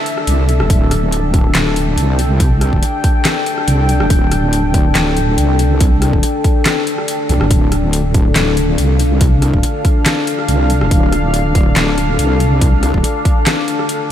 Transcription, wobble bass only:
0.27 C2
0.60 F1
0.70 D1
1.55 D1
1.97 C2
2.73 D1
3.68 C2
4.00 F1
4.10 D1
4.96 D1
5.38 C2
6.13 D1
7.29 C2
7.41 G1
7.51 D1
8.36 D1
8.78 C2
9.54 D1
10.49 C2
10.82 F1
10.91 D1
11.76 D1
12.19 C2
12.94 D1

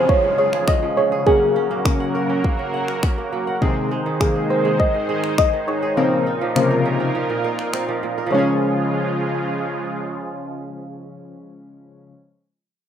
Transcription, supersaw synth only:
Already playing: C#3 F3 G#3 F4 G#4
1.26 F#3 A#3 F#4 A#4
3.62 D#3 G#3 D#4 G#4 C5
5.97 A#2 A#3 F4 A#4
8.32 C#3 F3 G#3 F4 G#4

